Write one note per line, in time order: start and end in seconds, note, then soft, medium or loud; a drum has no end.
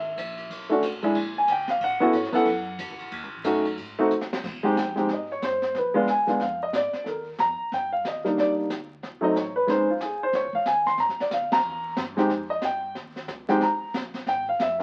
0.00 0.16 G#1 medium
0.00 0.47 E5 medium
0.17 0.49 A#1 medium
0.17 kick soft
0.17 hi-hat pedal medium
0.17 ride medium
0.37 ride soft
0.50 0.69 B1 medium
0.50 kick soft
0.50 ride medium
0.69 0.81 A3 medium
0.69 0.82 C#4 medium
0.69 0.82 D4 medium
0.69 0.82 F#4 medium
0.69 muted upright bass stroke soft
0.82 1.14 G#1 medium
0.82 kick soft
0.82 hi-hat pedal medium
0.82 ride medium
1.02 1.14 G#3 medium
1.02 1.15 D4 medium
1.02 1.15 E4 medium
1.02 1.15 G#4 medium
1.02 ride medium
1.15 1.47 A#1 loud
1.15 kick soft
1.15 ride medium
1.38 1.49 G#5 medium
1.47 1.80 D2 medium
1.47 kick soft
1.47 hi-hat pedal medium
1.47 ride medium
1.52 1.70 G5 medium
1.68 1.82 F5 medium
1.68 snare medium
1.80 2.12 A2 medium
1.80 2.02 F#5 medium
1.80 kick soft
1.80 ride medium
2.00 2.12 B3 medium
2.00 2.12 C#4 medium
2.00 2.13 E4 medium
2.00 2.13 F#4 medium
2.00 2.15 A4 medium
2.13 2.32 G#2 loud
2.13 2.35 C#5 medium
2.13 kick soft
2.13 hi-hat pedal medium
2.13 ride medium
2.24 snare soft
2.32 2.45 B3 medium
2.32 2.45 C#4 medium
2.32 2.45 E4 medium
2.32 2.46 A4 medium
2.32 3.09 F#5 loud
2.32 muted upright bass stroke soft
2.32 snare medium
2.32 ride medium
2.45 2.78 F#2 loud
2.45 kick soft
2.45 ride medium
2.79 2.90 E2 medium
2.79 kick soft
2.79 hi-hat pedal medium
2.79 ride medium
2.90 3.00 C#2 medium
2.99 3.11 A1 medium
2.99 ride medium
3.11 3.23 D#2 medium
3.11 kick soft
3.11 ride medium
3.23 3.33 C#2 medium
3.34 3.43 A1 medium
3.44 3.76 F#2 loud
3.44 3.63 A3 medium
3.44 3.63 C#4 medium
3.44 3.64 D#4 medium
3.44 3.64 F#4 medium
3.44 kick soft
3.44 hi-hat pedal medium
3.44 ride medium
3.65 ride medium
3.77 4.09 G#2 loud
3.77 kick soft
3.77 ride medium
3.99 4.10 A3 medium
3.99 4.10 C4 medium
3.99 4.10 D#4 medium
3.99 4.10 F#4 medium
4.11 4.43 E2 medium
4.11 hi-hat pedal medium
4.21 snare medium
4.33 snare loud
4.43 4.75 C2 medium
4.43 brush sweep soft
4.43 kick medium
4.43 snare soft
4.43 crash medium
4.63 4.75 G#3 medium
4.63 4.75 C4 medium
4.63 4.75 D#4 medium
4.63 4.75 G4 medium
4.76 5.08 A#1 medium
4.76 5.08 G5 medium
4.76 kick soft
4.76 snare medium
4.76 hi-hat pedal medium
4.96 5.07 G#3 medium
4.96 5.08 C4 medium
4.96 5.08 D#4 medium
4.96 5.08 G4 medium
4.96 snare soft
5.09 5.41 G#1 medium
5.09 brush sweep soft
5.09 kick soft
5.09 snare soft
5.13 5.31 D#5 medium
5.32 5.43 C#5 medium
5.42 5.74 G1 medium
5.42 5.74 C5 medium
5.42 kick soft
5.42 snare medium
5.42 hi-hat pedal medium
5.62 snare soft
5.74 6.06 A#1 medium
5.74 5.96 B4 medium
5.74 brush sweep soft
5.74 kick soft
5.74 snare soft
5.94 6.06 G#3 medium
5.94 6.06 B3 medium
5.94 6.06 D4 medium
5.94 6.06 F4 medium
6.07 6.39 D2 medium
6.07 6.39 G#5 medium
6.07 kick soft
6.07 snare medium
6.07 hi-hat pedal medium
6.27 6.39 G#3 medium
6.27 6.39 B3 medium
6.27 6.39 D4 medium
6.27 6.39 F4 medium
6.27 snare soft
6.40 6.72 F2 medium
6.40 6.61 F5 medium
6.40 brush sweep soft
6.40 kick soft
6.40 snare soft
6.63 6.74 D#5 medium
6.73 6.92 G#2 medium
6.73 7.05 D5 medium
6.73 kick soft
6.73 snare medium
6.73 hi-hat pedal medium
6.93 muted upright bass stroke soft
6.93 snare soft
7.04 7.38 D#2 medium
7.04 7.06 A4 soft
7.04 brush sweep soft
7.04 kick soft
7.04 snare soft
7.08 7.27 A#4 medium
7.38 7.57 F2 medium
7.38 7.70 A#5 medium
7.38 kick soft
7.38 snare medium
7.38 hi-hat pedal medium
7.60 muted upright bass stroke soft
7.72 8.03 G2 medium
7.72 7.92 G5 medium
7.72 brush sweep medium
7.72 kick soft
7.72 snare soft
7.93 8.04 F5 medium
8.05 8.36 D#2 medium
8.05 8.37 D#5 medium
8.05 kick soft
8.05 snare medium
8.05 hi-hat pedal medium
8.24 8.67 G3 medium
8.24 8.67 A#3 medium
8.24 8.68 D4 medium
8.24 8.68 D#4 medium
8.24 snare soft
8.37 8.69 C2 medium
8.37 8.51 D5 medium
8.37 brush sweep soft
8.37 kick soft
8.37 snare soft
8.70 9.02 D2 medium
8.70 kick soft
8.70 snare medium
8.70 hi-hat pedal medium
9.03 9.34 C2 medium
9.03 brush sweep medium
9.03 kick soft
9.03 snare soft
9.21 9.33 F#3 medium
9.21 9.33 A3 medium
9.21 9.34 C4 medium
9.21 9.34 D#4 medium
9.21 9.36 D#5 medium
9.35 9.67 A1 medium
9.35 9.55 C#5 medium
9.35 kick soft
9.35 snare medium
9.35 hi-hat pedal medium
9.56 9.68 B4 medium
9.67 10.00 A#1 medium
9.67 9.86 G#3 medium
9.67 9.86 C4 medium
9.67 9.86 C#4 medium
9.67 9.86 D#4 medium
9.67 9.89 C5 medium
9.67 brush sweep medium
9.67 kick soft
9.67 snare soft
9.90 10.01 F4 medium
10.00 10.32 C2 medium
10.00 10.21 G#4 medium
10.00 kick soft
10.00 snare medium
10.00 hi-hat pedal medium
10.23 10.34 C5 medium
10.33 10.52 C#2 medium
10.33 10.54 C#5 medium
10.33 brush sweep soft
10.33 kick soft
10.33 snare soft
10.53 10.66 F5 medium
10.53 kick medium
10.65 10.97 D#2 medium
10.65 10.86 G#5 medium
10.65 kick soft
10.65 snare medium
10.65 hi-hat pedal medium
10.86 10.99 C6 medium
10.86 snare soft
10.98 11.11 G2 medium
10.98 11.19 A#5 medium
10.98 brush sweep soft
10.98 kick soft
10.98 snare soft
11.09 11.20 F2 medium
11.09 snare soft
11.20 11.30 D2 medium
11.20 11.32 D5 medium
11.20 snare soft
11.31 11.63 D2 medium
11.31 11.52 F5 medium
11.31 kick soft
11.31 snare medium
11.31 hi-hat pedal medium
11.52 11.94 A#5 loud
11.52 snare medium
11.52 ride medium
11.64 11.96 E2 medium
11.64 brush sweep soft
11.96 12.28 G2 medium
11.96 kick soft
11.96 snare medium
11.96 hi-hat pedal medium
12.17 12.28 G#3 medium
12.17 12.29 C4 medium
12.17 12.29 D#4 medium
12.17 12.29 G4 medium
12.17 snare soft
12.29 12.61 F2 medium
12.29 brush sweep soft
12.29 kick soft
12.29 snare soft
12.50 12.62 D#5 medium
12.62 12.94 G2 medium
12.62 12.94 G5 medium
12.62 kick soft
12.62 snare medium
12.62 hi-hat pedal medium
12.95 13.27 D#2 medium
12.95 brush sweep soft
12.95 kick soft
12.95 snare soft
13.16 snare soft
13.28 13.60 C#2 medium
13.28 kick soft
13.28 snare medium
13.28 hi-hat pedal medium
13.49 13.60 G#3 medium
13.49 13.60 C4 medium
13.49 13.60 D#4 medium
13.49 13.61 G4 medium
13.49 13.61 G5 medium
13.49 snare soft
13.61 13.80 C2 medium
13.61 13.93 A#5 medium
13.61 brush sweep soft
13.61 kick soft
13.61 snare soft
13.82 muted upright bass stroke soft
13.94 14.26 A#1 medium
13.94 kick soft
13.94 snare medium
13.94 hi-hat pedal medium
14.14 snare soft
14.26 14.58 G#1 loud
14.26 14.47 G5 medium
14.26 brush sweep medium
14.26 kick soft
14.26 snare soft
14.49 14.60 F5 medium
14.59 14.83 F1 medium
14.59 14.83 E5 medium
14.59 kick soft
14.59 snare medium
14.59 hi-hat pedal medium
14.79 14.83 A#3 medium
14.79 14.83 C#4 medium
14.79 snare soft